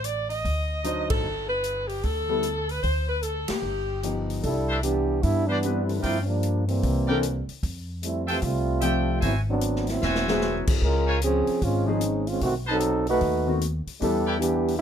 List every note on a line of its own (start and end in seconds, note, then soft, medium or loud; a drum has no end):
0.00 0.41 A1 medium
0.00 0.30 D5 medium
0.00 closed hi-hat medium
0.29 1.06 D#5 medium
0.29 open hi-hat soft
0.45 1.06 D2 medium
0.45 kick soft
0.45 open hi-hat soft
0.84 1.24 F#3 medium
0.84 1.24 D4 medium
0.84 1.25 D#4 medium
0.84 1.25 C5 medium
0.84 closed hi-hat medium
1.10 1.23 A1 medium
1.10 1.47 A4 loud
1.10 kick medium
1.10 ride medium
1.24 2.00 G1 medium
1.49 1.86 B4 medium
1.64 closed hi-hat medium
1.88 2.03 G4 medium
1.88 open hi-hat soft
2.03 2.80 D2 medium
2.03 2.69 A4 medium
2.03 kick soft
2.03 open hi-hat soft
2.29 2.42 G3 medium
2.29 2.42 B3 medium
2.29 2.43 E4 medium
2.29 2.43 A4 medium
2.43 closed hi-hat medium
2.69 2.84 B4 medium
2.69 open hi-hat soft
2.83 3.46 D2 medium
2.83 3.07 C5 medium
2.83 kick soft
2.83 open hi-hat soft
3.08 3.22 B4 medium
3.23 3.49 A4 medium
3.23 closed hi-hat soft
3.48 4.29 G4 medium
3.48 muted upright bass stroke soft
3.48 snare medium
3.48 ride medium
3.62 4.39 G1 medium
4.03 4.43 F3 soft
4.03 4.44 B3 soft
4.03 4.44 D#4 soft
4.03 4.44 G4 medium
4.03 closed hi-hat medium
4.30 open hi-hat soft
4.43 5.19 C2 medium
4.43 4.81 G3 medium
4.43 4.81 D4 medium
4.43 4.81 E4 medium
4.43 4.81 A4 loud
4.43 kick soft
4.43 open hi-hat soft
4.69 4.79 D4 medium
4.69 4.79 B4 medium
4.69 4.79 C5 medium
4.69 4.79 E5 medium
4.83 5.20 E3 medium
4.83 5.20 B3 medium
4.83 5.20 D4 medium
4.83 5.20 G4 loud
4.83 closed hi-hat medium
5.21 5.99 G2 medium
5.21 5.45 G3 medium
5.21 5.45 B3 medium
5.21 5.45 D4 medium
5.21 5.48 E4 loud
5.21 kick soft
5.21 open hi-hat soft
5.46 5.85 E3 medium
5.46 5.85 G3 medium
5.46 5.87 B3 medium
5.46 5.88 D4 medium
5.46 5.59 D4 medium
5.46 5.58 B4 medium
5.46 5.59 C5 medium
5.46 5.59 D5 medium
5.63 6.03 G3 medium
5.63 6.04 C4 medium
5.63 6.04 D4 medium
5.63 6.04 E4 medium
5.63 6.04 B4 medium
5.63 closed hi-hat medium
5.86 6.01 D3 medium
5.86 6.00 E3 medium
5.86 6.00 G3 medium
5.86 5.99 C4 medium
5.86 open hi-hat soft
6.00 6.79 G2 medium
6.00 6.18 F3 medium
6.00 6.18 A3 medium
6.00 6.18 C4 medium
6.00 6.18 E4 medium
6.00 6.20 F4 medium
6.00 6.20 A#4 medium
6.00 6.20 D5 medium
6.00 6.20 G5 medium
6.00 kick soft
6.00 open hi-hat soft
6.21 6.29 C#4 medium
6.26 6.67 F3 medium
6.26 6.66 G3 medium
6.26 6.66 A#3 medium
6.26 6.68 D4 medium
6.43 closed hi-hat medium
6.67 7.44 E3 medium
6.67 7.44 G3 medium
6.67 7.44 A#3 medium
6.67 7.44 C4 medium
6.67 open hi-hat soft
6.83 7.45 C2 medium
6.83 kick soft
6.83 open hi-hat soft
7.07 7.21 E3 medium
7.07 7.22 A#3 medium
7.07 7.21 C4 medium
7.07 7.22 D4 medium
7.07 7.18 E4 medium
7.07 7.22 A4 medium
7.07 7.17 A#4 medium
7.07 7.17 D5 medium
7.07 7.17 G5 medium
7.23 closed hi-hat medium
7.48 muted upright bass stroke soft
7.48 open hi-hat soft
7.63 8.39 F2 medium
7.63 kick soft
7.63 open hi-hat medium
8.03 8.27 G3 medium
8.03 8.27 A3 medium
8.03 8.27 C4 medium
8.03 8.27 E4 medium
8.03 closed hi-hat medium
8.27 8.42 E3 medium
8.27 8.42 A3 medium
8.27 8.42 C4 medium
8.27 8.37 F4 medium
8.27 8.42 G4 medium
8.27 8.37 A4 medium
8.27 8.37 E5 medium
8.27 8.37 G5 loud
8.27 open hi-hat soft
8.42 9.18 C2 medium
8.42 9.23 G3 medium
8.42 9.23 A3 medium
8.42 9.22 C4 medium
8.42 9.22 F4 loud
8.42 kick soft
8.42 open hi-hat soft
8.81 9.22 F3 medium
8.81 9.22 A3 soft
8.81 9.22 C4 medium
8.81 9.23 G4 medium
8.81 9.22 A4 medium
8.81 9.20 E5 medium
8.81 9.23 E5 medium
8.81 9.22 G5 loud
8.81 closed hi-hat medium
9.21 9.98 G#1 medium
9.21 9.34 F#3 medium
9.21 9.34 B3 medium
9.21 9.34 C4 medium
9.21 9.35 E4 medium
9.21 9.39 F#4 medium
9.21 9.39 C5 medium
9.21 9.39 E5 medium
9.21 9.39 G#5 medium
9.21 kick soft
9.21 open hi-hat medium
9.49 9.86 F#3 medium
9.49 9.86 B3 medium
9.49 9.86 C4 medium
9.49 9.86 D4 medium
9.61 closed hi-hat medium
9.76 snare soft
9.87 10.27 F#3 medium
9.87 10.28 B3 medium
9.87 10.27 C4 medium
9.87 10.27 E4 medium
9.87 snare soft
9.87 open hi-hat soft
10.02 10.64 E1 medium
10.02 10.62 F#4 medium
10.02 10.62 C5 medium
10.02 10.63 E5 medium
10.02 10.63 G#5 loud
10.02 snare medium
10.15 snare medium
10.28 10.65 F#3 medium
10.28 10.79 F#3 medium
10.28 10.65 C4 medium
10.28 10.80 C4 medium
10.28 10.65 E4 medium
10.28 10.80 E4 medium
10.28 10.65 G#4 medium
10.28 10.80 G#4 medium
10.28 10.79 B4 medium
10.28 snare medium
10.41 snare medium
10.67 kick medium
10.67 crash medium
10.82 11.44 C#2 medium
10.82 11.19 G#3 medium
10.82 11.20 C#4 medium
10.82 11.20 F4 medium
10.82 11.19 A#4 loud
10.82 kick soft
11.07 11.17 F4 medium
11.07 11.17 C5 medium
11.07 11.17 C#5 medium
11.07 11.17 G#5 medium
11.22 11.60 F3 medium
11.22 11.60 C4 medium
11.22 11.60 C#4 medium
11.22 11.60 G#4 loud
11.22 closed hi-hat medium
11.47 muted upright bass stroke soft
11.47 open hi-hat soft
11.62 12.38 G#1 medium
11.62 11.87 G#3 medium
11.62 11.87 C4 medium
11.62 11.87 C#4 medium
11.62 11.88 F4 loud
11.62 kick soft
11.62 open hi-hat soft
11.86 12.00 F3 medium
11.86 12.00 G#3 medium
11.86 12.28 G#3 medium
11.86 12.00 C4 medium
11.86 12.27 C4 medium
11.86 12.28 C#4 medium
11.86 12.01 C#4 medium
11.86 12.28 D#4 medium
11.86 12.01 G#4 medium
12.01 closed hi-hat medium
12.27 12.42 G#3 medium
12.27 12.42 C4 medium
12.27 12.42 C#4 medium
12.27 12.42 F4 medium
12.27 open hi-hat soft
12.41 13.17 B1 medium
12.41 12.54 D#3 medium
12.41 12.54 A3 medium
12.41 12.54 C4 medium
12.41 12.54 F#4 medium
12.41 kick soft
12.41 open hi-hat medium
12.66 13.06 F#3 medium
12.66 13.06 C4 medium
12.66 12.76 D#4 medium
12.66 13.06 D#4 medium
12.66 13.06 A4 loud
12.66 12.77 B4 medium
12.66 12.76 C5 medium
12.66 12.76 A5 loud
12.80 closed hi-hat medium
13.07 13.54 A3 medium
13.07 13.54 D#4 medium
13.07 13.54 F#4 medium
13.07 13.54 B4 loud
13.07 open hi-hat soft
13.21 13.83 D#2 medium
13.21 kick soft
13.21 open hi-hat soft
13.47 13.60 D#3 medium
13.47 13.60 A3 medium
13.47 13.60 B3 medium
13.47 13.60 C4 medium
13.47 13.61 F#4 medium
13.61 closed hi-hat medium
13.87 muted upright bass stroke soft
13.87 open hi-hat soft
14.01 14.77 E2 medium
14.01 14.81 E3 medium
14.01 14.38 G3 medium
14.01 14.81 G3 medium
14.01 14.81 B3 medium
14.01 14.38 D4 medium
14.01 14.81 D4 medium
14.01 14.38 E4 medium
14.01 14.81 G4 medium
14.01 14.38 A4 loud
14.01 kick soft
14.01 open hi-hat soft
14.26 14.36 E4 medium
14.26 14.36 B4 medium
14.26 14.36 D5 medium
14.26 14.36 G5 medium
14.39 14.77 E3 medium
14.39 14.77 B3 medium
14.39 14.77 D4 medium
14.39 14.77 G4 loud
14.39 closed hi-hat medium
14.68 open hi-hat soft
14.78 14.81 B3 medium
14.78 14.81 D4 medium
14.78 14.81 E4 loud